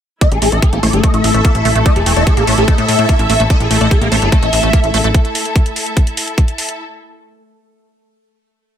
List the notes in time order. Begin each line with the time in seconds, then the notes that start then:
0.21 A3 E4 A4 E5, kick, closed hi-hat
0.30 A1 A4, closed hi-hat
0.42 A1 A3 A4, open hi-hat
0.52 A1 A3 E5, closed hi-hat
0.62 A4, kick, closed hi-hat
0.73 A1 A#3 A4, closed hi-hat
0.83 A1 A3 D5, open hi-hat
0.93 G1 A4, closed hi-hat
1.04 A3 E5, kick, closed hi-hat
1.14 A1 A3, closed hi-hat
1.24 A1 A5, open hi-hat
1.31 A1 A3 E5, closed hi-hat
1.45 A#3, kick, closed hi-hat
1.55 A1, closed hi-hat
1.65 A1 A3, open hi-hat
1.75 A1 A3, closed hi-hat
1.86 A3 E5, kick, closed hi-hat
1.96 E1 A4, closed hi-hat
2.06 E1 A3 A4, open hi-hat
2.17 E1 A3 E5, closed hi-hat
2.27 A4, kick, closed hi-hat
2.37 A1 A#3 A4, closed hi-hat
2.47 A1 A3 D5, open hi-hat
2.58 A1 A4, closed hi-hat
2.68 A3 E5, kick, closed hi-hat
2.78 A2 A3, closed hi-hat
2.88 A2, open hi-hat
2.99 A2 A3, closed hi-hat
3.09 A#3, kick, closed hi-hat
3.19 A1, closed hi-hat
3.30 A1 A3, open hi-hat
3.40 A1 A3, closed hi-hat
3.50 A3 E5, kick, closed hi-hat
3.60 A1 A4, closed hi-hat
3.71 A1 A3 A4, open hi-hat
3.81 A1 A3 E5, closed hi-hat
3.91 A4, kick, closed hi-hat
4.01 A1 A#3 A4, closed hi-hat
4.12 A1 A3 D5, open hi-hat
4.22 G1 A4, closed hi-hat
4.32 A3 E5, kick, closed hi-hat
4.43 A1 A3, closed hi-hat
4.53 A1, open hi-hat
4.63 A1 A3, closed hi-hat
4.73 A#3, kick, closed hi-hat
4.84 A1, closed hi-hat
4.94 A1 A3, open hi-hat
5.04 A1 A3, closed hi-hat
5.14 kick, closed hi-hat
5.25 closed hi-hat
5.35 open hi-hat
5.45 closed hi-hat
5.56 kick, closed hi-hat
5.66 closed hi-hat
5.76 open hi-hat
5.86 closed hi-hat
5.97 kick, closed hi-hat
6.07 closed hi-hat
6.17 open hi-hat
6.28 closed hi-hat
6.38 kick, closed hi-hat
6.48 closed hi-hat
6.58 open hi-hat
6.69 closed hi-hat